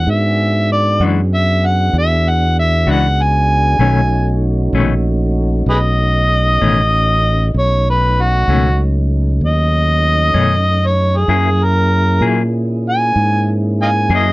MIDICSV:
0, 0, Header, 1, 5, 480
1, 0, Start_track
1, 0, Tempo, 623701
1, 61, Time_signature, 12, 3, 24, 8
1, 11026, End_track
2, 0, Start_track
2, 0, Title_t, "Harmonica"
2, 0, Program_c, 0, 22
2, 0, Note_on_c, 0, 78, 81
2, 76, Note_on_c, 0, 76, 88
2, 88, Note_off_c, 0, 78, 0
2, 533, Note_off_c, 0, 76, 0
2, 556, Note_on_c, 0, 74, 97
2, 780, Note_off_c, 0, 74, 0
2, 1034, Note_on_c, 0, 76, 107
2, 1278, Note_on_c, 0, 78, 89
2, 1289, Note_off_c, 0, 76, 0
2, 1500, Note_off_c, 0, 78, 0
2, 1524, Note_on_c, 0, 76, 93
2, 1764, Note_on_c, 0, 78, 85
2, 1775, Note_off_c, 0, 76, 0
2, 1983, Note_off_c, 0, 78, 0
2, 1996, Note_on_c, 0, 76, 98
2, 2240, Note_on_c, 0, 78, 84
2, 2252, Note_off_c, 0, 76, 0
2, 2480, Note_on_c, 0, 80, 102
2, 2492, Note_off_c, 0, 78, 0
2, 3398, Note_off_c, 0, 80, 0
2, 4386, Note_on_c, 0, 68, 89
2, 4386, Note_on_c, 0, 71, 89
2, 4386, Note_on_c, 0, 75, 127
2, 4435, Note_off_c, 0, 68, 0
2, 4452, Note_off_c, 0, 71, 0
2, 5789, Note_off_c, 0, 75, 0
2, 5836, Note_on_c, 0, 73, 95
2, 6058, Note_off_c, 0, 73, 0
2, 6082, Note_on_c, 0, 71, 95
2, 6319, Note_on_c, 0, 66, 106
2, 6331, Note_off_c, 0, 71, 0
2, 6772, Note_off_c, 0, 66, 0
2, 7280, Note_on_c, 0, 75, 118
2, 8362, Note_on_c, 0, 73, 87
2, 8374, Note_off_c, 0, 75, 0
2, 8594, Note_on_c, 0, 68, 76
2, 8606, Note_off_c, 0, 73, 0
2, 8958, Note_on_c, 0, 70, 100
2, 8969, Note_off_c, 0, 68, 0
2, 9414, Note_off_c, 0, 70, 0
2, 9924, Note_on_c, 0, 80, 102
2, 10379, Note_off_c, 0, 80, 0
2, 10637, Note_on_c, 0, 75, 66
2, 10637, Note_on_c, 0, 77, 66
2, 10637, Note_on_c, 0, 80, 94
2, 10684, Note_off_c, 0, 75, 0
2, 10696, Note_off_c, 0, 77, 0
2, 10863, Note_off_c, 0, 80, 0
2, 10889, Note_on_c, 0, 75, 82
2, 11026, Note_off_c, 0, 75, 0
2, 11026, End_track
3, 0, Start_track
3, 0, Title_t, "Tonewheel organ"
3, 0, Program_c, 1, 16
3, 51, Note_on_c, 1, 59, 65
3, 60, Note_on_c, 1, 66, 59
3, 65, Note_on_c, 1, 68, 63
3, 68, Note_on_c, 1, 62, 74
3, 2901, Note_off_c, 1, 59, 0
3, 2905, Note_off_c, 1, 66, 0
3, 2908, Note_off_c, 1, 68, 0
3, 2909, Note_off_c, 1, 62, 0
3, 2935, Note_on_c, 1, 66, 71
3, 2940, Note_on_c, 1, 57, 66
3, 2941, Note_on_c, 1, 61, 69
3, 2942, Note_on_c, 1, 63, 71
3, 5784, Note_off_c, 1, 66, 0
3, 5787, Note_off_c, 1, 57, 0
3, 5787, Note_off_c, 1, 61, 0
3, 5788, Note_off_c, 1, 63, 0
3, 5801, Note_on_c, 1, 61, 67
3, 5804, Note_on_c, 1, 63, 68
3, 5805, Note_on_c, 1, 57, 65
3, 5808, Note_on_c, 1, 54, 65
3, 8662, Note_off_c, 1, 61, 0
3, 8663, Note_off_c, 1, 63, 0
3, 8664, Note_off_c, 1, 57, 0
3, 8665, Note_off_c, 1, 54, 0
3, 8705, Note_on_c, 1, 64, 64
3, 8706, Note_on_c, 1, 68, 67
3, 8712, Note_on_c, 1, 61, 65
3, 8715, Note_on_c, 1, 58, 67
3, 11026, Note_off_c, 1, 58, 0
3, 11026, Note_off_c, 1, 61, 0
3, 11026, Note_off_c, 1, 64, 0
3, 11026, Note_off_c, 1, 68, 0
3, 11026, End_track
4, 0, Start_track
4, 0, Title_t, "Clean electric guitar"
4, 0, Program_c, 2, 27
4, 775, Note_on_c, 2, 66, 68
4, 778, Note_on_c, 2, 62, 63
4, 785, Note_on_c, 2, 56, 54
4, 786, Note_on_c, 2, 52, 61
4, 921, Note_off_c, 2, 66, 0
4, 922, Note_off_c, 2, 62, 0
4, 925, Note_off_c, 2, 56, 0
4, 926, Note_off_c, 2, 52, 0
4, 2208, Note_on_c, 2, 66, 64
4, 2214, Note_on_c, 2, 62, 65
4, 2221, Note_on_c, 2, 52, 59
4, 2222, Note_on_c, 2, 56, 65
4, 2356, Note_off_c, 2, 66, 0
4, 2359, Note_off_c, 2, 62, 0
4, 2362, Note_off_c, 2, 52, 0
4, 2363, Note_off_c, 2, 56, 0
4, 2921, Note_on_c, 2, 47, 72
4, 2928, Note_on_c, 2, 51, 61
4, 2929, Note_on_c, 2, 57, 73
4, 2931, Note_on_c, 2, 61, 81
4, 3071, Note_off_c, 2, 47, 0
4, 3075, Note_off_c, 2, 51, 0
4, 3076, Note_off_c, 2, 57, 0
4, 3077, Note_off_c, 2, 61, 0
4, 3654, Note_on_c, 2, 61, 79
4, 3656, Note_on_c, 2, 57, 81
4, 3657, Note_on_c, 2, 51, 65
4, 3660, Note_on_c, 2, 47, 63
4, 3797, Note_off_c, 2, 61, 0
4, 3799, Note_off_c, 2, 51, 0
4, 3799, Note_off_c, 2, 57, 0
4, 3801, Note_off_c, 2, 47, 0
4, 5091, Note_on_c, 2, 61, 81
4, 5095, Note_on_c, 2, 57, 70
4, 5096, Note_on_c, 2, 47, 63
4, 5099, Note_on_c, 2, 51, 67
4, 5236, Note_off_c, 2, 61, 0
4, 5238, Note_off_c, 2, 47, 0
4, 5238, Note_off_c, 2, 57, 0
4, 5240, Note_off_c, 2, 51, 0
4, 6536, Note_on_c, 2, 61, 67
4, 6542, Note_on_c, 2, 57, 61
4, 6543, Note_on_c, 2, 51, 60
4, 6551, Note_on_c, 2, 47, 57
4, 6679, Note_off_c, 2, 61, 0
4, 6682, Note_off_c, 2, 51, 0
4, 6682, Note_off_c, 2, 57, 0
4, 6686, Note_off_c, 2, 47, 0
4, 7959, Note_on_c, 2, 61, 74
4, 7972, Note_on_c, 2, 51, 64
4, 7973, Note_on_c, 2, 57, 70
4, 7974, Note_on_c, 2, 47, 65
4, 8111, Note_off_c, 2, 61, 0
4, 8118, Note_off_c, 2, 51, 0
4, 8119, Note_off_c, 2, 47, 0
4, 8119, Note_off_c, 2, 57, 0
4, 8687, Note_on_c, 2, 54, 67
4, 8689, Note_on_c, 2, 58, 63
4, 8689, Note_on_c, 2, 64, 68
4, 8694, Note_on_c, 2, 68, 72
4, 8836, Note_off_c, 2, 54, 0
4, 8837, Note_off_c, 2, 58, 0
4, 8837, Note_off_c, 2, 64, 0
4, 8840, Note_off_c, 2, 68, 0
4, 9404, Note_on_c, 2, 68, 75
4, 9408, Note_on_c, 2, 64, 62
4, 9410, Note_on_c, 2, 58, 56
4, 9415, Note_on_c, 2, 54, 48
4, 9555, Note_off_c, 2, 68, 0
4, 9557, Note_off_c, 2, 64, 0
4, 9558, Note_off_c, 2, 58, 0
4, 9561, Note_off_c, 2, 54, 0
4, 10851, Note_on_c, 2, 64, 69
4, 10853, Note_on_c, 2, 68, 72
4, 10855, Note_on_c, 2, 58, 56
4, 10864, Note_on_c, 2, 54, 59
4, 11001, Note_off_c, 2, 64, 0
4, 11002, Note_off_c, 2, 68, 0
4, 11003, Note_off_c, 2, 58, 0
4, 11008, Note_off_c, 2, 54, 0
4, 11026, End_track
5, 0, Start_track
5, 0, Title_t, "Fingered electric bass"
5, 0, Program_c, 3, 33
5, 53, Note_on_c, 3, 44, 83
5, 753, Note_off_c, 3, 44, 0
5, 768, Note_on_c, 3, 42, 84
5, 1470, Note_off_c, 3, 42, 0
5, 1488, Note_on_c, 3, 40, 91
5, 2189, Note_off_c, 3, 40, 0
5, 2205, Note_on_c, 3, 37, 87
5, 2907, Note_off_c, 3, 37, 0
5, 2916, Note_on_c, 3, 35, 82
5, 3623, Note_off_c, 3, 35, 0
5, 3639, Note_on_c, 3, 34, 86
5, 4344, Note_off_c, 3, 34, 0
5, 4358, Note_on_c, 3, 35, 79
5, 5063, Note_off_c, 3, 35, 0
5, 5093, Note_on_c, 3, 33, 89
5, 5791, Note_off_c, 3, 33, 0
5, 5806, Note_on_c, 3, 35, 87
5, 6508, Note_off_c, 3, 35, 0
5, 6524, Note_on_c, 3, 37, 89
5, 7228, Note_off_c, 3, 37, 0
5, 7242, Note_on_c, 3, 39, 74
5, 7947, Note_off_c, 3, 39, 0
5, 7961, Note_on_c, 3, 42, 81
5, 8667, Note_off_c, 3, 42, 0
5, 8682, Note_on_c, 3, 42, 86
5, 9389, Note_off_c, 3, 42, 0
5, 9395, Note_on_c, 3, 46, 88
5, 10106, Note_off_c, 3, 46, 0
5, 10125, Note_on_c, 3, 44, 79
5, 10833, Note_off_c, 3, 44, 0
5, 10847, Note_on_c, 3, 42, 83
5, 11026, Note_off_c, 3, 42, 0
5, 11026, End_track
0, 0, End_of_file